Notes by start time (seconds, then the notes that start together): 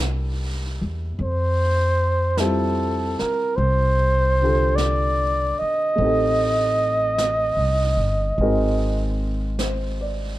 Already playing: C2 G3 A#3 D4 E4 A4
0.81 E2
1.19 F2, brush sweep
1.23 C5
2.37 G3 C4 E4 F4 A4 C5, brush sweep, snare, hi-hat pedal
3.19 A#4, muted upright bass stroke, snare
3.56 C2 C5, brush sweep
4.42 D3 F4 G4 A4
4.76 D5, brush sweep, snare, hi-hat pedal
5.59 D#5, muted upright bass stroke
5.96 A1 A3 C4, brush sweep
6.01 D#4 G4
6.06 A4
7.18 brush sweep, snare, hi-hat pedal
7.57 C2
7.97 G1
8.38 G#1 G#3 C4, brush sweep
8.42 D#4 F#4 A#4
9.59 C5, brush sweep, snare, hi-hat pedal
10.01 D5